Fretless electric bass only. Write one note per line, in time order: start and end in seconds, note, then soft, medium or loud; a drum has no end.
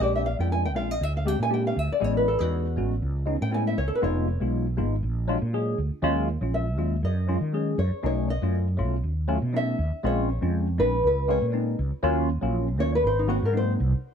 0.00 0.34 A#1 medium
0.39 0.76 F2 medium
0.76 0.98 A#1 medium
1.01 1.35 D2 medium
1.39 1.72 A#2 medium
1.76 1.88 D2 medium
1.90 muted fretless electric bass stroke soft
2.02 2.35 A1 medium
2.40 2.78 E2 medium
2.77 2.99 A1 medium
3.02 3.36 C#2 medium
3.41 3.73 A2 medium
3.77 3.89 C#2 medium
3.91 muted fretless electric bass stroke soft
4.03 4.36 F1 loud
4.41 4.80 B1 medium
4.78 5.00 G#1 medium
5.03 5.36 A#1 medium
5.42 5.74 A#2 medium
5.78 5.90 D2 medium
5.91 muted fretless electric bass stroke soft
6.02 6.36 D#2 medium
6.41 6.78 A#1 medium
6.78 7.00 D#2 medium
7.03 7.36 F#2 medium
7.41 7.73 D#3 medium
7.78 7.90 F#2 medium
7.91 muted fretless electric bass stroke soft
8.04 8.37 B1 medium
8.42 8.80 F#2 medium
8.79 9.00 B1 medium
9.03 9.37 D#2 medium
9.42 9.74 B2 medium
9.78 9.90 D#2 medium
9.92 muted fretless electric bass stroke soft
10.04 10.37 A#1 medium
10.42 10.80 F2 medium
10.78 11.00 A#1 loud
11.03 11.37 C#2 medium
11.42 11.74 A#2 medium
11.79 11.91 C#2 medium
11.92 muted fretless electric bass stroke soft
12.03 12.37 D#2 loud
12.42 12.79 A#1 medium
12.79 13.01 D#2 loud
13.04 13.38 G#1 medium
13.42 13.75 G#2 medium
13.80 13.92 C2 medium
13.94 muted fretless electric bass stroke soft